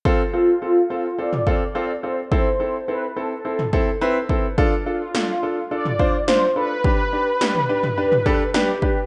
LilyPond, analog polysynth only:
\new Staff \with { instrumentName = "Analog polysynth" } { \time 4/4 \key f \lydian \tempo 4 = 106 r8 f'4. d''4. c''8 | c''4 b'8 a'2 r8 | r8 f'4. d''4 c''8 b'8~ | b'2. g'4 | }